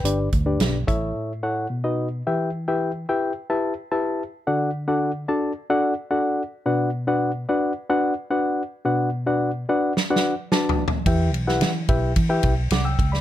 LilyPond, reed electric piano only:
<<
  \new Staff \with { instrumentName = "Reed electric piano" } { \time 4/4 \key e \dorian \tempo 4 = 109 << { g''16 r2. r8. | r1 | r1 | r1 |
r1 | r2. <fis'' d'''>16 <g'' e'''>8 <d'' b''>16 | } \\ { <d' g' b' d''>8 r16 <d' g' b' d''>8 r16 <e' a' cis'' e''>8. r16 <e' a' cis'' fis''>8 r16 <dis' fis' b' dis''>8 r16 | <e' g' b' e'' g''>8 r16 <e' g' b' e'' g''>8 r16 <e' g' b' e'' g''>8 r16 <e' g' b' e'' a''>8 r16 <e' g' b' e'' a''>8 r8 | <d' fis' a' d'' fis''>8 r16 <d' fis' a' d'' fis''>8 r16 <d' fis' a' d'' a''>8 r16 <d' fis' a' d'' fis''>8 r16 <d' fis' a' d'' fis''>8 r8 | <d' fis' b' d'' fis''>8 r16 <d' fis' b' d'' fis''>8 r16 <d' fis' b' d'' fis''>8 r16 <d' fis' b' d'' fis''>8 r16 <d' fis' b' d'' fis''>8 r8 |
<d' fis' b' d'' fis''>8 r16 <d' fis' b' d'' fis''>8 r16 <d' fis' b' d'' fis''>8 r16 <d' fis' b' d'' fis''>8 r16 <d' fis' b' d'' a''>8 r8 | <e' g' b' e'' g''>8 r16 <e' g' b' e'' fis''>8 r16 <e' g' b' e'' g''>8 r16 <e' g' b' e'' g''>8 r4 r16 | } >> }
  \new Staff \with { instrumentName = "Reed electric piano" } { \clef bass \time 4/4 \key e \dorian g,4. a,4. b,4 | e4. r2 r8 | d4. r2 r8 | b,4. r2 r8 |
b,4. r2 r8 | e4. r2 r8 | }
>>